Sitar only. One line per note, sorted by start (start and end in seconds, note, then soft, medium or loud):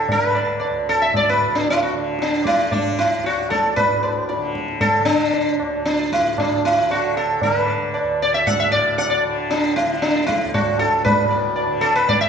0.12 0.27 A#4 medium
0.27 0.89 B4 medium
0.35 0.58 D5 soft
0.60 0.85 D5 soft
0.89 1.00 A4 medium
1.02 1.14 E5 medium
1.16 1.28 D5 medium
1.29 1.55 B4 medium
1.55 1.67 D4 medium
1.70 1.80 E4 medium
1.83 1.93 F#4 medium
2.22 2.46 D4 medium
2.46 2.73 E4 medium
2.46 2.70 D5 soft
2.71 2.99 D4 medium
2.71 2.95 D5 soft
2.99 3.25 E4 medium
3.26 3.50 F#4 medium
3.26 3.49 D5 soft
3.50 3.76 A4 medium
3.50 3.74 D5 soft
3.76 4.51 B4 medium
4.03 4.27 D5 soft
4.29 4.53 D5 soft
4.81 5.08 A4 medium
5.05 5.55 D4 medium
5.85 6.12 D4 medium
6.13 6.39 E4 medium
6.40 6.65 D4 medium
6.65 6.91 E4 medium
6.91 7.17 F#4 medium
7.17 7.43 A4 medium
7.43 7.58 A#4 medium
7.58 8.23 B4 medium
7.68 7.92 D5 soft
7.94 8.18 D5 soft
8.22 8.34 D5 medium
8.34 8.47 E5 medium
8.47 8.60 F#5 medium
8.60 8.71 E5 medium
8.72 8.99 D5 medium
8.98 9.12 F#5 medium
9.10 9.23 D5 medium
9.51 9.76 D4 medium
9.76 10.02 E4 medium
10.02 10.26 D4 medium
10.27 10.52 E4 medium
10.54 10.79 F#4 medium
10.79 11.04 A4 medium
11.05 11.81 B4 medium
11.30 11.55 D5 soft
11.56 11.81 D5 soft
11.81 11.95 A4 medium
11.95 12.10 B4 medium
12.09 12.20 D5 medium
12.21 12.29 E5 loud